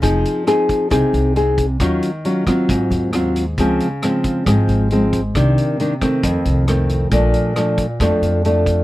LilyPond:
<<
  \new Staff \with { instrumentName = "Nylon-string guitar" } { \time 4/4 \key f \dorian \tempo 4 = 135 << { <c' ees' aes'>4 <c' ees' aes'>4 <c' ees' aes'>4 <c' ees' aes'>8 r8 | <ges des' f'>8 r8 <ges des' f'>8 <ges c' f'>4. <fis c' f'>8 r8 | <f aes c'>8 r8 <f aes c'>4 <f aes c'>4 <f aes c'>8 r8 | <ees bes d'>4 <ees bes d'>8 <ees a c'>4. <ees a c'>4 |
<f a d'>4 <f a d'>8 r8 <f a d'>4 <f a d'>4 | } \\ { f2 c2 | ees2 aes,2 | des2 aes,2 | c2 f,2 |
bes,2 f,2 | } >> }
  \new Staff \with { instrumentName = "Upright bass" } { \clef bass \time 4/4 \key f \dorian f,,8 r4. c,16 r16 c,4. | ees,8 r4. aes,,16 r16 ees,4. | des,8 r4. aes,,16 r16 aes,,4. | c,8 r4. f,16 r16 c,4. |
bes,,8 r4. f,16 r16 f,4. | }
  \new DrumStaff \with { instrumentName = "Drums" } \drummode { \time 4/4 <hh bd>8 hh8 <hh ss>8 <hh bd>8 <hh bd ss>8 hh8 hh8 <hh bd>8 | <hh bd ss>8 hh8 hh8 <hh bd ss>8 <hh bd>8 hh8 <hh ss>8 hh8 | <hh bd>8 hh8 <hh ss>8 <hh bd>8 <hh bd ss>8 hh8 hh8 <hh bd>8 | <hh bd ss>8 hh8 hh8 <hh bd ss>8 <hh bd>8 hh8 <hh ss>8 hh8 |
<hh bd>8 hh8 <hh ss>8 <hh bd>8 <hh bd ss>8 hh8 hh8 <hh bd>8 | }
>>